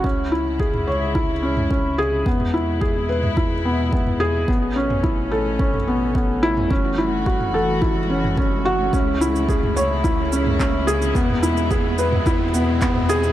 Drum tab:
SH |----------------|----------------|----------------|----------------|
CP |----------------|----------------|----------------|----------------|
T2 |-----o-----o----|-o-----o-----o--|---o-----o-----o|-----o-----o----|
BD |o---o---o---o---|o---o---o---o---|o---o---o---o---|o---o---o---o---|

SH |x-xxx-x-x-x-x-xx|x-xxx-x-x-x-x-xx|
CP |------------x---|------------x---|
T2 |-----o-----o----|-o-----o-----o--|
BD |o---o---o---o---|o---o---o---o---|